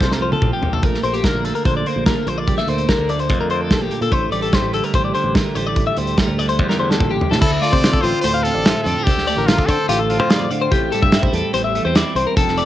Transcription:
Already playing: F2 F3 C4 C5
0.00 C2 A3, kick, snare
0.12 A#4, snare
0.21 F3 C5
0.32 A4, high tom
0.42 C2 C4, kick, mid tom
0.53 G4
0.62 A#1 A#2, floor tom
0.73 A4, floor tom
0.83 A3 A#4, kick, closed hi-hat
0.94 snare
1.03 A#1 A#3 C5, closed hi-hat
1.14 G4, closed hi-hat
1.24 D3 A#4, kick, snare, closed hi-hat
1.34 A#1
1.45 A3 A4, closed hi-hat
1.55 A#4, closed hi-hat
1.65 A#1 D3 C5, kick, closed hi-hat
1.77 D5
1.86 A#3 C5, closed hi-hat
1.96 A#1
2.06 A3 A#4, kick, snare, closed hi-hat
2.27 A#1 A#2 C5, closed hi-hat
2.38 D5
2.47 G3, kick, closed hi-hat
2.58 A3 E5, snare
2.67 D2 A#3 C5, closed hi-hat
2.78 closed hi-hat
2.89 D3 A#4, kick, snare, closed hi-hat
2.98 D2
3.09 A3 D5, closed hi-hat
3.19 C5, closed hi-hat
3.29 F2 D3, kick, closed hi-hat
3.41 A#4
3.50 A#3 C5, closed hi-hat
3.61 A4
3.70 A#1 A3, kick, snare, closed hi-hat
3.81 G4
3.91 A#2, closed hi-hat
4.01 A#2 A4, closed hi-hat
4.11 A1 A2 C5, kick, closed hi-hat
4.31 A1 G3 D5, closed hi-hat
4.42 A4, closed hi-hat
4.53 A3 C5, kick, snare, closed hi-hat
4.62 A1
4.73 D3 A4, closed hi-hat
4.84 A#4, closed hi-hat
4.93 A1 G3 C5, kick, closed hi-hat
5.05 D5
5.15 D3 C5, closed hi-hat
5.24 A1
5.35 A3 A#4, kick, snare, closed hi-hat
5.55 A1 G3 C5, closed hi-hat
5.67 D5
5.76 A2, kick, closed hi-hat
5.87 E5
5.97 D2 G3 C5, closed hi-hat
6.07 closed hi-hat
6.17 A3 A#4, kick, snare, closed hi-hat
6.28 D2
6.39 D3 D5, closed hi-hat
6.49 C5, closed hi-hat
6.59 E2 G3, kick
6.69 A#4, snare
6.80 D3 C5
6.90 A4, snare
7.00 A1 A#2, kick
7.11 G4
7.21 C3, floor tom
7.31 A2 A4, snare
7.41 D2 E4 A4, kick, crash
7.62 A3 F4 D5, closed hi-hat
7.72 C3 C5, kick
7.84 F4, snare, closed hi-hat
7.93 A4, kick
8.01 A1 C4 F4 C5, closed hi-hat
8.21 D2 A2 C5, closed hi-hat
8.34 F5
8.43 C4 A4, closed hi-hat
8.55 A1 D5
8.65 F4 E5, snare, closed hi-hat
8.83 F2 A4 D5, closed hi-hat
8.88 C4
8.96 A#4
9.03 D2 G4 A4, kick, closed hi-hat
9.08 D2
9.18 snare
9.27 A3 D5, closed hi-hat
9.37 A1 A#4
9.46 A3 F4, snare, closed hi-hat
9.58 C4 A4, kick
9.66 D3 C4 A4 C5, kick, closed hi-hat
9.88 A1 A2 F4 G4, closed hi-hat
9.99 A4
10.10 C4 F4, closed hi-hat
10.20 F2 C5
10.30 C4 D5, snare, closed hi-hat
10.51 D3 C4 F5, closed hi-hat
10.62 C5
10.71 A1 A2 G4, kick, closed hi-hat
10.92 G3 A4, closed hi-hat
11.02 G2 E5, kick
11.12 E4, snare, closed hi-hat
11.23 C5, kick
11.33 E2 C4 A4, closed hi-hat
11.54 A1 E2 C5, closed hi-hat
11.64 E5
11.75 A3, closed hi-hat
11.85 E2 C4 C5
11.95 E4 D5, snare, closed hi-hat
12.15 C2 C4 C5, closed hi-hat
12.27 A#4
12.36 F1 F2 A4, kick, closed hi-hat
12.48 snare
12.57 A3 D5, closed hi-hat

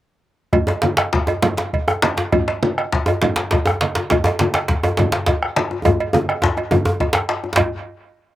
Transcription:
0.53 bombo rim, bombo low, cowbell, low conga, djembe bass
0.67 cowbell, djembe slap, djembe tone
0.82 bombo rim, djembe slap, high conga, djembe tone
0.97 bombo rim, cowbell, djembe slap, high conga
1.13 bombo rim, bombo low, djembe slap
1.27 bombo rim, cowbell, djembe tone
1.42 cowbell, djembe slap, high conga, djembe bass, low conga
1.57 bombo rim, djembe slap
1.73 bombo low, cowbell
1.88 bombo rim, djembe tone
2.02 cowbell, djembe slap, high conga
2.17 djembe slap, djembe tone
2.32 bombo rim, bombo low, cowbell, low conga, djembe bass
2.48 cowbell, djembe slap, high conga
2.63 bombo rim, high conga, djembe tone
2.78 bombo rim, cowbell, high conga
2.93 bombo rim, bombo low, djembe slap
3.06 djembe tone
3.08 bombo rim, cowbell, djembe tone
3.22 cowbell, djembe slap, high conga, low conga, djembe bass
3.36 bombo rim, djembe slap
3.51 bombo low, cowbell, djembe slap, djembe tone
3.66 bombo rim, djembe tone
3.81 cowbell, djembe slap, high conga
3.95 djembe slap, djembe tone
4.10 bombo rim, bombo low, cowbell, djembe slap, low conga, djembe bass
4.24 cowbell, djembe slap, djembe tone, high conga
4.39 bombo rim, djembe slap, djembe tone, high conga
4.54 bombo rim, cowbell, djembe slap, high conga
4.68 bombo rim, bombo low, djembe slap
4.83 bombo rim, cowbell, djembe tone
4.97 djembe slap
4.99 cowbell, djembe slap, high conga, djembe bass, low conga
5.12 bombo rim, djembe slap
5.26 bombo low, cowbell, djembe slap, djembe tone
5.43 bombo rim
5.56 cowbell, djembe slap, high conga
5.71 djembe tone
5.85 bombo low, cowbell, djembe tone, low conga, djembe bass
6.00 cowbell
6.13 djembe slap, djembe tone, high conga
6.29 bombo rim, cowbell
6.42 bombo low, djembe slap, djembe tone, high conga
6.57 bombo rim, cowbell, djembe tone
6.71 cowbell, djembe tone, high conga, djembe bass, low conga
6.85 djembe tone, high conga
7.00 bombo low, cowbell, djembe tone, high conga
7.13 bombo rim, djembe slap, high conga
7.29 cowbell, djembe slap
7.44 djembe slap, djembe tone
7.56 bombo low, cowbell, djembe slap, low conga, djembe bass

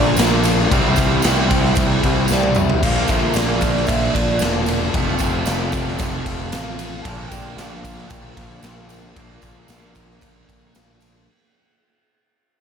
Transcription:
Already playing: A#1 A#2 D3 F3 A#3 D4 F4 A#4 D5 A5
0.17 A#1 D3 A#3 D4, snare, ride, tambourine
0.21 F4
0.44 A#3 D4 F4, ride, tambourine
0.70 C2 C3 E3 G3 C4 E4 C5 G5, kick, ride
0.96 C2 G3 C4 E4, kick, ride, tambourine
1.22 C2 E3 G3 C4 E4, snare, ride, tambourine
1.50 G3 C4 E4, kick, ride
1.65 snare
1.75 C2 C3 E3 G3 C4, kick, ride, tambourine
1.79 E4
2.03 C2 G3 C4 E4, kick, snare, ride
2.28 C2 E3 G3 D5, snare, tambourine
2.32 C4 E4
2.43 high tom
2.55 C4 E4 E5, mid tom, tambourine
2.60 G3
2.70 floor tom
2.83 A#1 A#2 D3 F3 A#3 D4 F4 A#4 F5 A5, kick, crash, ride
3.08 A#1 D4 F4 E5, kick, ride, tambourine
3.12 A#3
3.34 A#1 D3 A#3 D4 D5, snare, ride, tambourine
3.38 F4
3.61 A#3 D4 F4, kick, ride, tambourine
3.77 snare
3.87 A#1 A#2 D3 A#3 D4 F4 E5, kick, ride, tambourine
4.14 A#1 A#3 D4 F4 D5, kick, snare, ride
4.39 E1 D3 A#3 D4, snare, ride, tambourine
4.43 F4
4.66 A#3 D4 F4, ride, tambourine
4.93 F1 F2 C3 F3 A3 C4 F4 F5, kick, ride
5.19 F1 F3 A3 C4 F4, kick, ride, tambourine
5.46 F1 F3 A3 C4 F4, snare, ride, tambourine
5.72 A3 C4 F4, kick, ride, tambourine
5.76 F3
5.88 snare
5.99 F1 F2 C3 F3 A3 C4 F4, kick, ride, tambourine
6.26 F1 F3 A3 C4 F4, kick, snare, ride
6.51 A1 F3 A3 C4 F4 F5, snare, ride, tambourine
6.78 F3 A3 C4 F4, ride, tambourine
7.02 A#1 A#2 D3 F3 D4 A#4 A5, kick, ride
7.06 A#3 D4 F4
7.29 A#1 F4 G5, kick, ride, tambourine
7.33 A#3 D4
7.56 A#1 D3 A#3 D4 F4 F5, snare, ride, tambourine
7.84 A#3 D4 F4, kick, ride, tambourine
7.98 snare
8.09 A#1 A#2 D3 A#3 D4 F4 G5, kick, ride, tambourine
8.36 A#1 A#3 D4 F4 F5, kick, ride
8.63 A#1 D3 A#3 D4 F4, snare, ride, tambourine
8.89 A#3 D4 F4, ride, tambourine
9.16 A#1 A#2 D3 F3 A#3 D4 F4, kick, ride, tambourine
9.41 A#1 A#3 D4 F4, kick, ride, tambourine
9.68 A#1 D3 A#3 D4 F4, snare, ride, tambourine
9.94 A#3 D4 F4, kick, ride, tambourine
10.10 snare
10.21 A#1 A#2 D3 A#3 D4 F4, kick, ride, tambourine
10.47 A#1 A#3 D4 F4, kick, ride, tambourine
10.73 A#1 D3 A#3 D4 F4, snare, ride, tambourine
10.99 A#3 D4 F4, ride, tambourine

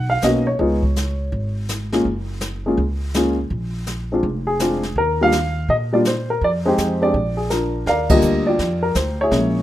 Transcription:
Already playing: B1 F#5
0.10 F5
0.22 B1 A#3 B3 C#4 F#4 D#5, snare, hi-hat pedal
0.47 C#5
0.59 C#2 G#3 B3 D#4 F4, brush sweep, kick
0.83 kick
0.96 snare, hi-hat pedal
1.32 G#1, brush sweep, kick
1.69 snare, hi-hat pedal
1.92 G#3 A#3 C#4 F4, snare
2.05 F#1, brush sweep, kick
2.40 snare, hi-hat pedal
2.66 G#3 A#3 C#4 F4
2.77 C#2, brush sweep, kick
3.14 G#3 A#3 C#4 F4, snare, hi-hat pedal
3.50 A#1, brush sweep, kick
3.86 snare, hi-hat pedal
4.12 G#3 C4 D4 F4
4.23 F1, brush sweep, kick
4.47 G#4
4.59 G#3 C4 D4 F4, snare, hi-hat pedal
4.83 snare
4.96 D#2 A#4, brush sweep, kick
5.21 G3 A#3 D4 F4 F5
5.32 snare, hi-hat pedal
5.68 A#2 D#5, brush sweep, kick
5.93 G3 A#3 D4 F4 D5
6.05 C5, snare, hi-hat pedal
6.30 A#4
6.41 F2 D5, brush sweep, kick
6.66 G#3 C4 D#4 G4 C5
6.78 F2, snare, hi-hat pedal
7.01 G#3 C4 D4 G4 D5
7.14 A#1, brush sweep, kick
7.37 G#4
7.50 D4 F4 A#4, snare, hi-hat pedal
7.86 D#2 A#4 D5 F5, brush sweep, kick, snare
8.09 D3 G3 A#3 F4 G4 A#4 D#5, kick, ride
8.21 D2, hi-hat pedal
8.47 F4 G4 D5
8.59 F2, brush sweep, kick, snare
8.83 A#4
8.95 D2 C5, kick, snare, hi-hat pedal
9.21 E4 G#4 C#5
9.31 A#1 G#3 A#3 C#4 E4, brush sweep, kick, snare

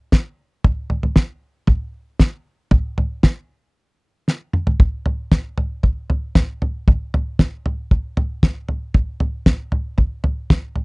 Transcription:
0.12 kick, snare
0.64 kick, floor tom
0.90 floor tom
1.03 floor tom
1.16 kick, snare
1.67 kick, floor tom
2.19 kick, snare
2.71 kick, floor tom
2.98 floor tom
3.23 kick, snare
4.28 snare
4.53 mid tom
4.67 floor tom
4.80 kick, floor tom
5.06 floor tom
5.32 kick, snare, floor tom
5.58 floor tom
5.83 kick, floor tom
6.10 floor tom
6.35 kick, snare, floor tom
6.62 floor tom
6.88 kick, floor tom
7.14 floor tom
7.39 kick, snare, floor tom
7.66 floor tom
7.91 kick, floor tom
8.17 floor tom
8.43 kick, snare, floor tom
8.69 floor tom
8.94 kick, floor tom
9.20 floor tom
9.46 kick, snare, floor tom
9.72 floor tom
9.98 kick, floor tom
10.24 floor tom
10.50 kick, snare, floor tom
10.76 floor tom

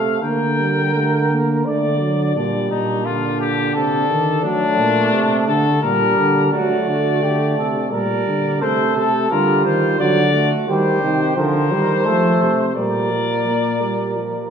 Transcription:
Already playing: C3 A3 A4 F5
0.22 D3 A#3 A#4 G5
0.59 G3
0.95 A3
1.31 A#3
1.65 D3 A3 D5
2.01 F#3
2.35 A#2 G3 D4 D5
2.70 A#2 D#4
3.05 D3 F4
3.40 G4
3.75 C3 A4
4.10 D#3
4.44 F#3 A3 D4
4.78 A#2
5.13 C3
5.48 D3 A4
5.82 A#2 G3 D4 A#4
6.18 D3
6.52 F#3 A3 F#4 D5
6.88 D3 F#4
7.23 D3 G4
7.58 C3 A4
7.92 A#2 G3 A#4 D5
8.27 D3
8.61 C3 A3 A4 C5
8.96 C3 A4
9.31 D3 G3 F4 A#4
9.65 D#3 C5
10.00 D3 F#3 F#4 D5
10.33 A3
10.68 D#3 G3 G4 C5
11.02 C3 D#3
11.36 D3 F3 A#4 C5
11.71 D#3 G3
12.05 F3 A3 A4
12.42 C3
12.76 A#2 G3 A#4 D5
13.11 F3
13.46 A#3
13.81 G3
14.16 F3

